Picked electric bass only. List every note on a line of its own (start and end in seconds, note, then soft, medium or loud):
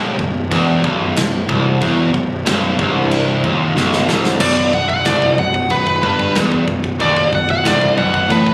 0.00 0.17 D#1 loud
0.19 0.49 B0 medium
0.51 0.81 E1 loud
0.84 1.14 B0 medium
1.16 1.46 B0 medium
1.49 1.79 C1 medium
1.82 2.12 E1 loud
2.15 2.44 B0 medium
2.46 2.76 B0 loud
2.79 3.39 C1 medium
3.44 3.74 D#1 medium
3.76 4.06 B0 medium
4.08 4.38 C1 medium
4.41 4.71 B0 medium
4.73 5.03 B0 medium
5.06 5.36 C1 medium
5.38 5.68 B0 medium
5.71 6.01 B0 medium
6.03 6.33 G1 loud
6.35 6.66 E1 medium
6.67 6.98 B0 medium
7.00 7.30 D#1 medium
7.33 7.63 B0 medium
7.65 7.95 C1 medium
7.98 8.28 B0 loud
8.30 8.54 A1 loud